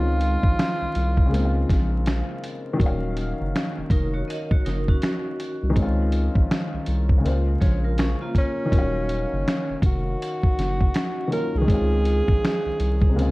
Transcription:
Already playing: sub bass C#2, felt piano D#3 G#3 C4 C#4 F4, tenor saxophone F4
0.21 closed hi-hat
0.43 sub bass A#1, kick
0.59 finger snap, snare, closed hi-hat
0.82 sub bass C2
0.95 sub bass C2, closed hi-hat
1.17 kick
1.26 felt piano C#3 G#3
1.32 sub bass C#2, felt piano A#3 C4, closed hi-hat
1.39 felt piano D#4
1.45 felt piano F4
1.69 sub bass A#1, kick, snare, closed hi-hat
2.06 finger snap, snare, closed hi-hat
2.44 closed hi-hat
2.73 felt piano D#3 F#3
2.80 sub bass D#1, felt piano A#3 C#4, kick, closed hi-hat
2.86 felt piano F5
3.17 closed hi-hat
3.41 sub bass F#1
3.56 finger snap, snare, closed hi-hat
3.78 sub bass F1
3.90 sub bass F1, vibraphone D#4 A#4, kick, closed hi-hat
4.14 vibraphone F#4 C#5
4.28 vibraphone A#4 D#5, closed hi-hat
4.51 sub bass F#1, vibraphone F#4 C#5, kick
4.65 sub bass F#1, vibraphone D#4 A#4, snare, closed hi-hat
4.88 vibraphone C#4 F#4, kick
5.02 finger snap, snare, closed hi-hat
5.40 closed hi-hat
5.63 sub bass C2
5.70 felt piano D#3 G#3
5.76 sub bass C#2, felt piano C4 C#4, kick, closed hi-hat
5.82 felt piano F4
6.12 closed hi-hat
6.35 sub bass A#1, kick
6.51 finger snap, snare, closed hi-hat
6.74 sub bass C2
6.86 sub bass C2, closed hi-hat
7.09 kick
7.18 felt piano C#3 G#3
7.24 sub bass C#2, felt piano A#3 C5, closed hi-hat
7.30 felt piano F4
7.61 sub bass A#1, vibraphone G#4 C#5, kick, snare, closed hi-hat
7.84 vibraphone F4 A#4
7.98 vibraphone C#4 G#4, finger snap, snare, closed hi-hat
8.22 vibraphone A#3 F4
8.35 tenor saxophone C#4, kick, closed hi-hat
8.65 felt piano D#3 F3
8.72 sub bass D#1, felt piano F#3 A#3 C#4, kick, closed hi-hat
8.78 felt piano F5
9.09 closed hi-hat
9.33 sub bass F#1
9.48 finger snap, snare, closed hi-hat
9.70 sub bass F1
9.82 sub bass F1, tenor saxophone F#4, kick, closed hi-hat
10.22 closed hi-hat
10.43 sub bass F#1, kick
10.58 sub bass F#1, snare, closed hi-hat
10.81 kick
10.94 finger snap, snare, closed hi-hat
11.28 felt piano D#3 F#3 A#3
11.32 felt piano C#4 F4, tenor saxophone A#4, closed hi-hat
11.55 sub bass C2, tenor saxophone G#4
11.61 felt piano D#3 G#3
11.68 sub bass C#2, felt piano C4 C#4, kick, closed hi-hat
11.74 felt piano F4
12.05 closed hi-hat
12.28 sub bass A#1, kick
12.45 finger snap, snare, closed hi-hat
12.66 sub bass C2
12.80 sub bass C2, closed hi-hat
13.02 kick
13.10 felt piano C3 G#3
13.16 sub bass C#2, felt piano C#3 A#3 C4, closed hi-hat
13.22 felt piano F4

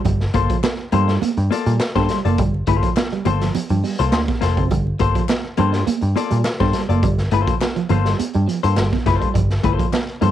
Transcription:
0.05 picked electric bass G1, clean electric guitar G3, kick, closed hi-hat, muted conga, low conga
0.21 snare, muted conga
0.34 picked electric bass G1, clean electric guitar A#3 F4 A4 C5, muted clean electric guitar stroke, kick, closed hi-hat, high conga
0.50 clean electric guitar F3, kick, closed hi-hat
0.64 muted clean electric guitar stroke, snare, clap, muted conga, high conga
0.79 muted conga
0.92 picked electric bass G2, clean electric guitar G3 A#3 F4 A4 C5, closed hi-hat, high conga, low conga
1.08 clean electric guitar G3, snare, closed hi-hat
1.22 clean electric guitar A#3, muted picked electric bass stroke, closed hi-hat, muted conga, high conga
1.37 picked electric bass G2, muted clean electric guitar stroke, closed hi-hat, muted conga
1.51 clean electric guitar A#3 F4 A4 D5, closed hi-hat, high conga
1.66 picked electric bass A#2, clean electric guitar G3, closed hi-hat
1.80 muted clean electric guitar stroke, snare, clap, muted conga
1.95 picked electric bass G2, clean electric guitar A#3 F4 A4 C5, kick, snare, closed hi-hat, muted conga, high conga
2.09 clean electric guitar G3, snare, closed hi-hat
2.25 picked electric bass F#1, clean electric guitar A#3 F4 A4 D5, closed hi-hat
2.38 picked electric bass G1, clean electric guitar G3, kick, closed hi-hat, low conga
2.54 muted conga
2.67 picked electric bass G1, clean electric guitar A#3 F4 A4 C5, muted clean electric guitar stroke, kick, closed hi-hat, high conga
2.83 clean electric guitar F3, kick, closed hi-hat
2.97 snare, clap, muted conga, high conga
3.12 clean electric guitar G3, closed hi-hat
3.25 picked electric bass G1, clean electric guitar A#3 F4 A4 C5, muted clean electric guitar stroke, closed hi-hat, high conga, low conga
3.41 clean electric guitar F3, snare, closed hi-hat
3.55 muted clean electric guitar stroke, muted picked electric bass stroke, closed hi-hat, muted conga, high conga, low conga
3.69 picked electric bass G2, clean electric guitar F3, closed hi-hat, muted conga
3.84 clean electric guitar G3, open hi-hat, high conga
3.99 picked electric bass C2, clean electric guitar A#3 F4 A4 C5, closed hi-hat
4.12 picked electric bass D2, clean electric guitar A#3, snare, clap, muted conga
4.28 muted clean electric guitar stroke, kick, snare, closed hi-hat, muted conga, high conga
4.41 picked electric bass F1, clean electric guitar A#3 F4 A4 C5, snare, closed hi-hat
4.57 picked electric bass F#1, clean electric guitar C4, kick, closed hi-hat
4.71 picked electric bass G1, clean electric guitar G3, kick, closed hi-hat, muted conga, low conga
4.87 muted conga
4.99 picked electric bass G1, clean electric guitar A#3 F4 A4 C5, muted clean electric guitar stroke, kick, closed hi-hat, high conga
5.15 clean electric guitar F3, kick, closed hi-hat
5.29 muted clean electric guitar stroke, snare, clap, muted conga, high conga
5.45 muted conga
5.57 picked electric bass G2, clean electric guitar G3 A#3 F4 A4 C5, closed hi-hat, high conga, low conga
5.73 clean electric guitar G3, snare, closed hi-hat
5.87 clean electric guitar A#3, muted picked electric bass stroke, closed hi-hat, muted conga, high conga
6.01 picked electric bass G2, muted clean electric guitar stroke, closed hi-hat, muted conga
6.16 clean electric guitar A#3 F4 A4 D5, closed hi-hat, high conga
6.30 picked electric bass A#2, clean electric guitar G3, closed hi-hat
6.44 muted clean electric guitar stroke, snare, clap, muted conga
6.60 picked electric bass G2, clean electric guitar A#3 F4 A4 C5, kick, snare, muted conga, high conga
6.73 clean electric guitar G3, snare, closed hi-hat
6.89 picked electric bass F#1, clean electric guitar A#3 F4 A4 D5, closed hi-hat
7.03 picked electric bass G1, clean electric guitar G3, kick, closed hi-hat, muted conga, low conga
7.18 snare, closed hi-hat
7.31 picked electric bass G1, clean electric guitar A#3 F4 A4 C5, muted clean electric guitar stroke, closed hi-hat, high conga
7.47 clean electric guitar F3, kick, closed hi-hat
7.61 snare, clap, high conga
7.76 clean electric guitar F3, closed hi-hat
7.89 picked electric bass G1, clean electric guitar A#3 F4 A4 C5, muted clean electric guitar stroke, closed hi-hat, high conga, low conga
8.05 clean electric guitar G3, snare, closed hi-hat
8.19 muted clean electric guitar stroke, muted picked electric bass stroke, closed hi-hat, muted conga, high conga
8.33 picked electric bass G2, clean electric guitar G3, closed hi-hat, muted conga
8.48 clean electric guitar F3, closed hi-hat, high conga
8.63 picked electric bass G2, clean electric guitar A#3 F4 A4 C5, closed hi-hat
8.76 picked electric bass G1, clean electric guitar G3, snare, clap
8.92 muted clean electric guitar stroke, kick, snare, muted conga, high conga
9.06 picked electric bass F#1, clean electric guitar A#3 F4 A4 C5, kick, snare, closed hi-hat
9.21 clean electric guitar G3, kick, closed hi-hat
9.34 picked electric bass G1, clean electric guitar G3, kick, closed hi-hat, low conga
9.50 snare, closed hi-hat, muted conga
9.63 picked electric bass G1, clean electric guitar A#3 F4 A4 C5, muted clean electric guitar stroke, kick, closed hi-hat, high conga
9.79 clean electric guitar F3, kick, closed hi-hat
9.93 muted clean electric guitar stroke, snare, clap, muted conga, high conga
10.08 closed hi-hat
10.21 picked electric bass G2, clean electric guitar G3 A#3 F4 A4 C5, closed hi-hat, high conga, low conga

